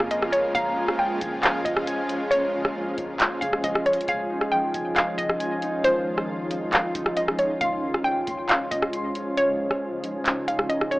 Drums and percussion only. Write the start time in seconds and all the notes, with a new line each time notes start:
0.00 cross-stick
0.11 closed hi-hat
0.22 cross-stick
0.33 closed hi-hat
0.55 kick, closed hi-hat
0.88 cross-stick
1.21 kick, closed hi-hat
1.43 clap, closed hi-hat
1.65 kick, closed hi-hat
1.77 cross-stick
1.87 closed hi-hat
2.09 closed hi-hat
2.31 closed hi-hat
2.65 cross-stick
2.98 kick, closed hi-hat
3.20 clap, closed hi-hat
3.42 kick, closed hi-hat
3.53 cross-stick
3.64 kick, closed hi-hat
3.75 cross-stick
3.86 closed hi-hat
3.93 closed hi-hat
4.01 closed hi-hat
4.08 kick, closed hi-hat
4.41 cross-stick
4.74 kick, closed hi-hat
4.96 clap, closed hi-hat
5.18 kick, closed hi-hat
5.29 cross-stick
5.40 closed hi-hat
5.62 closed hi-hat
5.84 closed hi-hat
6.18 cross-stick
6.51 closed hi-hat
6.73 clap, closed hi-hat
6.95 kick, closed hi-hat
7.06 cross-stick
7.17 closed hi-hat
7.28 cross-stick
7.39 closed hi-hat
7.61 kick, closed hi-hat
7.94 cross-stick
8.27 kick, closed hi-hat
8.49 clap, closed hi-hat
8.71 kick, closed hi-hat
8.82 cross-stick
8.93 closed hi-hat
9.15 closed hi-hat
9.37 closed hi-hat
9.71 cross-stick
10.04 closed hi-hat
10.26 clap, closed hi-hat
10.48 closed hi-hat
10.59 cross-stick
10.70 closed hi-hat
10.81 cross-stick
10.92 closed hi-hat